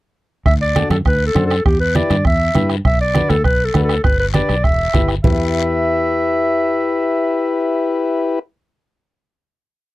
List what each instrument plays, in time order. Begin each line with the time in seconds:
0.46 fingered electric bass D2, clarinet E5, bombo low, bombo rim, long guiro
0.62 clarinet D5
0.75 transistor combo organ D4 F#4 A4, bombo rim, high conga, short guiro
0.90 fingered electric bass F#2, clarinet A4, bombo rim, high conga, short guiro
1.05 fingered electric bass D2, clarinet B4, bombo low, bombo rim, long guiro
1.26 clarinet A4
1.35 fingered electric bass F#2, transistor combo organ D4 F#4 C5, bombo rim, high conga, short guiro
1.46 clarinet A4
1.50 bombo rim, short guiro
1.65 fingered electric bass E2, clarinet G4, bombo low, bombo rim, long guiro
1.80 clarinet B4
1.95 transistor combo organ E4 G4 B4, clarinet D5, bombo rim, high conga, short guiro
2.10 fingered electric bass G2, bombo rim, high conga, short guiro
2.25 fingered electric bass E2, clarinet E5, bombo low, bombo rim, long guiro
2.54 fingered electric bass G2, transistor combo organ E4 G4 B4, bombo rim, high conga, short guiro
2.69 bombo rim, short guiro
2.85 fingered electric bass B1, clarinet E5, bombo low, bombo rim, long guiro
3.01 clarinet D5
3.14 transistor combo organ D4 F#4 B4, bombo rim, high conga, short guiro
3.30 fingered electric bass D2, clarinet A4, bombo rim, high conga, short guiro
3.44 fingered electric bass B1, clarinet B4, bombo low, bombo rim, long guiro
3.65 clarinet A4
3.74 fingered electric bass D2, transistor combo organ D4 F#4 B4, bombo rim, high conga, short guiro
3.84 clarinet A4
3.89 bombo rim, short guiro
4.04 fingered electric bass G1, clarinet B4, bombo low, bombo rim, long guiro
4.20 clarinet B4
4.34 transistor combo organ D4 G4 B4, clarinet D5, bombo rim, high conga, short guiro
4.49 fingered electric bass B1, bombo rim, short guiro
4.64 fingered electric bass E1, clarinet E5, bombo low, bombo rim, long guiro
4.94 fingered electric bass G1, transistor combo organ E4 G4 B4, bombo low, bombo rim, high conga, short guiro
5.08 bombo rim, short guiro
5.23 fingered electric bass E2, transistor combo organ E4 G4 B4, clarinet E5, bombo low, low conga, long guiro